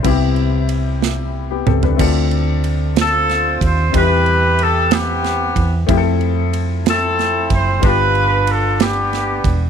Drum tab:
CC |x-----------|x-----------|------------|------------|
RD |--x-x-------|--x-x-x-x-x-|x-x-x-x-x-x-|x-x-x-x-x-x-|
SD |------o-----|------o-o---|------o-o---|------o-o---|
T2 |----------o-|------------|------------|------------|
FT |-----------o|------------|------------|------------|
BD |o-----------|o---------o-|o---------o-|o---------o-|

CC |------------|
RD |x-x-x-x-x-x-|
SD |------o-o---|
T2 |------------|
FT |------------|
BD |o---------o-|